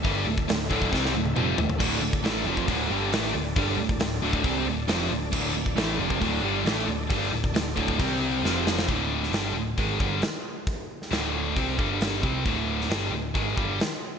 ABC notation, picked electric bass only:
X:1
M:4/4
L:1/8
Q:1/4=135
K:Dm
V:1 name="Picked electric bass" clef=bass
G,,, D,,, D,,, D,,, C,, D,,, F,,, D,,, | D,,, D,,, A,,, F,,, D,,, G,,, A,,, D,,, | G,,, D,,, D,,, D,,, C,, D,,, F,,, D,,, | D,,, D,,, A,,, F,,, D,,, G,,, A,,, D,,, |
G,,, D,,, D,,, D,,, C,,2 F,,,2 | D,,,2 G,,, D,,, ^G,,, =G,,, z2 | z2 D,,,2 C,, G,,,2 C,, | D,,,2 G,,, D,,, ^G,,, =G,,, z2 |]